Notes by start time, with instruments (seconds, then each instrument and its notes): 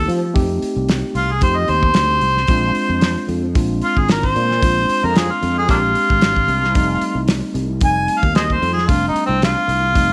Already playing: tine electric piano A3 C4 D#4 G4
0.08 fretless electric bass F3, open hi-hat
0.34 fretless electric bass F2, tine electric piano A3 C4 D#4 G4, kick, open hi-hat
0.62 muted fretless electric bass stroke, open hi-hat
0.76 fretless electric bass C2
0.89 snare, open hi-hat
1.14 fretless electric bass C2, harmonica F4, open hi-hat
1.32 harmonica G#4
1.41 fretless electric bass F2, tine electric piano A3 C4 D#4 G4, harmonica C5, kick, open hi-hat
1.57 harmonica D#5
1.68 fretless electric bass D#2, harmonica C5, open hi-hat
1.83 kick
1.94 fretless electric bass D2, snare, open hi-hat
2.21 fretless electric bass C2, open hi-hat
2.37 snare
2.47 fretless electric bass A#1, tine electric piano G#3 C4 D4 F4, kick, open hi-hat
2.75 open hi-hat
2.89 fretless electric bass F2
3.01 snare, open hi-hat
3.28 fretless electric bass F2, open hi-hat
3.54 fretless electric bass A#1, tine electric piano G#3 C4 D4 F4, kick, open hi-hat
3.82 harmonica F4, open hi-hat
3.97 fretless electric bass G#1, harmonica G#4, kick
4.09 harmonica A#4, snare, open hi-hat
4.23 harmonica C5, kick
4.36 fretless electric bass A#2, open hi-hat
4.51 snare
4.62 fretless electric bass A#1, tine electric piano G#3 C4 D4 F4, kick, open hi-hat
4.89 open hi-hat
5.03 fretless electric bass F2, harmonica A#4
5.16 harmonica G#4, snare, open hi-hat
5.31 harmonica F4
5.42 fretless electric bass F2, open hi-hat
5.58 harmonica G#4
5.68 fretless electric bass A#1, tine electric piano G#3 C4 D4 G4, harmonica A#3 D4 F4, kick, open hi-hat
5.95 open hi-hat
6.10 fretless electric bass G#1, kick
6.21 snare, open hi-hat
6.36 kick
6.48 fretless electric bass C2, open hi-hat
6.64 snare
6.74 fretless electric bass F1, tine electric piano G3 A3 C4 D#4, kick, open hi-hat
7.01 open hi-hat
7.15 fretless electric bass C2
7.28 snare, open hi-hat
7.54 fretless electric bass C2, open hi-hat
7.81 fretless electric bass F1, tine electric piano G3 A3 C4 D#4, kick, open hi-hat
7.85 harmonica G#5
8.08 open hi-hat
8.19 harmonica F5, kick
8.23 fretless electric bass D#2
8.35 harmonica G#4 C5 D#5, snare, open hi-hat
8.50 harmonica C5, kick
8.62 fretless electric bass F2, open hi-hat
8.73 harmonica G#4
8.78 snare
8.88 fretless electric bass F1, tine electric piano G3 A3 C4 D4, harmonica F4, kick, open hi-hat
9.08 harmonica D#4
9.16 open hi-hat
9.26 fretless electric bass C2, harmonica C4
9.42 harmonica F4, snare, open hi-hat
9.68 fretless electric bass C2, open hi-hat
9.94 fretless electric bass F1, tine electric piano G3 A3 C4 D#4, kick, open hi-hat